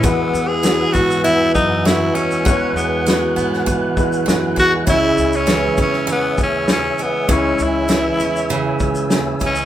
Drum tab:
SH |x-x-x-xxx-x-x-xx|x-x-x-x-x-xxx-x-|x-xxx-x-x-x-x-x-|x-x-x-xxx-xxx-xx|
SD |----o-------o---|----o--o----o---|----o--o----o---|----o-------o---|
BD |o-----o---o-----|o-------o-o---o-|o-----o---o-----|o---------o---o-|